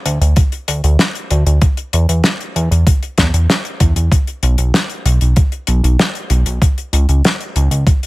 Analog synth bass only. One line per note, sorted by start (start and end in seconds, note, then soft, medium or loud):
0.05 0.19 D2 loud
0.21 0.35 D2 medium
0.68 0.82 D2 medium
0.84 0.97 D2 medium
1.30 1.44 D2 medium
1.46 1.60 D2 medium
1.93 2.07 E2 medium
2.09 2.22 E2 medium
2.55 2.69 E2 medium
2.71 2.85 E2 medium
3.18 3.32 E2 medium
3.34 3.47 E2 medium
3.80 3.94 E2 medium
3.96 4.10 E2 medium
4.43 4.57 B1 medium
4.58 4.72 B1 medium
5.05 5.19 B1 medium
5.21 5.35 B1 medium
5.68 5.81 B1 medium
5.83 5.97 B1 medium
6.30 6.44 B1 medium
6.46 6.60 B1 medium
6.93 7.06 C#2 medium
7.08 7.22 C#2 medium
7.55 7.69 C#2 medium
7.71 7.85 C#2 medium